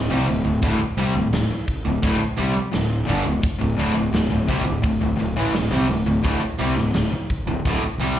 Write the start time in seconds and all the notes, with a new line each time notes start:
Already playing: A2
0.10 C2 C3 G3
0.28 D1 D2 A2, open hi-hat
0.44 D1 D2 A2
0.62 D1 D2 A2, kick, open hi-hat
0.80 muted fingered electric bass stroke, muted overdriven electric guitar stroke, muted distorted electric guitar stroke
0.97 C2 C3 G3, open hi-hat
1.14 D1 D2 A2
1.31 D1 D2 A2, snare, open hi-hat
1.49 muted fingered electric bass stroke, muted overdriven electric guitar stroke, muted distorted electric guitar stroke
1.68 kick, open hi-hat
1.85 D1 D2 A2
2.02 D1 D2 A2, kick, open hi-hat
2.20 muted overdriven electric guitar stroke, muted distorted electric guitar stroke
2.38 C2 C3 G3, open hi-hat
2.55 muted overdriven electric guitar stroke, muted distorted electric guitar stroke, muted fingered electric bass stroke
2.71 D1 D2 A2, snare, open hi-hat
3.06 G1 G2 D3, open hi-hat
3.25 D1 D2 A2
3.42 muted distorted electric guitar stroke, muted fingered electric bass stroke, muted overdriven electric guitar stroke, kick, open hi-hat
3.59 D1 D2 A2
3.77 D1 D2 A2, open hi-hat
3.95 D1 D2 A2
4.13 D1 D2 A2, snare, open hi-hat
4.30 D1 D2 A2
4.47 C2 C3 G3, kick, open hi-hat
4.65 D1 D2 A2
4.82 D1 D2 A2, kick, open hi-hat
5.01 D1 D2 A2
5.16 D1 D2 A2, open hi-hat
5.36 A1 A2 E3
5.54 D1 D2 A2, snare, open hi-hat
5.71 C2 C3 G3
5.88 D1 D2 A2, open hi-hat
6.06 D1 D2 A2
6.23 D1 D2 A2, kick, open hi-hat
6.41 muted distorted electric guitar stroke, muted overdriven electric guitar stroke, muted fingered electric bass stroke
6.59 C2 C3 G3, open hi-hat
6.76 D1 D2 A2, snare
6.93 D1 D2 A2, snare, open hi-hat
7.10 muted distorted electric guitar stroke, muted fingered electric bass stroke, muted overdriven electric guitar stroke
7.30 kick, open hi-hat
7.46 D1 D2 A2
7.65 D1 D2 A2, kick, open hi-hat
7.82 muted fingered electric bass stroke, muted overdriven electric guitar stroke, muted distorted electric guitar stroke
7.98 C2 C3 G3, open hi-hat